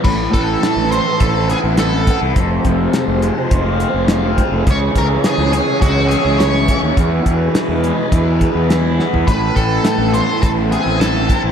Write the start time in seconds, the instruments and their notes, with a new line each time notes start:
0.04 fingered electric bass A1, distorted electric guitar A2, string section E3 A4 B4, lead electric guitar B4, kick, crash
0.32 fingered electric bass A1, distorted electric guitar E3, lead electric guitar A4, kick, closed hi-hat
0.61 distorted electric guitar E3, snare, closed hi-hat
0.76 fingered electric bass A1
0.91 distorted electric guitar C4, lead electric guitar C5, closed hi-hat
1.20 fingered electric bass A1, distorted electric guitar E4, lead electric guitar A4, kick, closed hi-hat
1.50 distorted electric guitar B3, lead electric guitar G#4, closed hi-hat
1.64 fingered electric bass A1
1.77 distorted electric guitar E4, lead electric guitar A4, snare, closed hi-hat
2.07 distorted electric guitar B3, kick, closed hi-hat
2.21 fingered electric bass C2
2.36 fingered electric bass F1, distorted electric guitar F2, string section F3 G#3 G#4 C5, kick, closed hi-hat
2.65 fingered electric bass F1, distorted electric guitar C3, kick, closed hi-hat
2.93 distorted electric guitar F3, snare, closed hi-hat
3.08 fingered electric bass F1
3.22 distorted electric guitar G#3, closed hi-hat
3.51 fingered electric bass F1, distorted electric guitar F4, kick, closed hi-hat
3.80 distorted electric guitar C4, closed hi-hat
3.94 fingered electric bass F1
4.08 distorted electric guitar F4, snare, closed hi-hat
4.38 distorted electric guitar C4, kick, closed hi-hat
4.52 fingered electric bass F1
4.67 fingered electric bass C#2, distorted electric guitar C#3, string section E3 C#4 C#5, lead electric guitar C#5, kick, closed hi-hat
4.95 fingered electric bass C#2, distorted electric guitar E3, lead electric guitar A#4, kick, closed hi-hat
5.24 distorted electric guitar E3, lead electric guitar G#4, snare, closed hi-hat
5.38 fingered electric bass C#2
5.53 distorted electric guitar G#3, lead electric guitar G#4, snare, closed hi-hat
5.81 fingered electric bass C#2, distorted electric guitar E4, lead electric guitar F#4, kick, closed hi-hat
6.08 distorted electric guitar C#4, lead electric guitar G#4, closed hi-hat
6.25 fingered electric bass C#2
6.38 distorted electric guitar E4, lead electric guitar C#5, snare, closed hi-hat
6.68 distorted electric guitar C#4, kick, closed hi-hat
6.82 fingered electric bass D#2
6.96 fingered electric bass E2, distorted electric guitar E2, string section G#3 B4, kick, closed hi-hat
7.25 fingered electric bass E2, distorted electric guitar B2, kick, closed hi-hat
7.54 distorted electric guitar E3, snare, closed hi-hat
7.69 fingered electric bass E2
7.84 distorted electric guitar G#3, closed hi-hat
8.11 fingered electric bass E2, distorted electric guitar E4, kick, closed hi-hat
8.39 distorted electric guitar B3, kick, closed hi-hat
8.55 fingered electric bass E2
8.68 distorted electric guitar E4, snare, closed hi-hat
8.97 distorted electric guitar B3, snare
9.13 fingered electric bass E2, floor tom
9.27 fingered electric bass A1, distorted electric guitar A2, string section A4 B4, lead electric guitar B4, kick, closed hi-hat
9.56 fingered electric bass A1, distorted electric guitar E3, lead electric guitar A4, kick, closed hi-hat
9.85 distorted electric guitar E3, snare, closed hi-hat
9.98 fingered electric bass A1
10.13 distorted electric guitar B3, lead electric guitar C5, closed hi-hat
10.42 fingered electric bass A1, distorted electric guitar E4, lead electric guitar A4, kick, closed hi-hat
10.72 distorted electric guitar C4, lead electric guitar G#4, closed hi-hat
10.86 fingered electric bass A1
11.01 distorted electric guitar E4, lead electric guitar A4, snare, closed hi-hat
11.30 distorted electric guitar C4, kick, closed hi-hat
11.44 fingered electric bass A1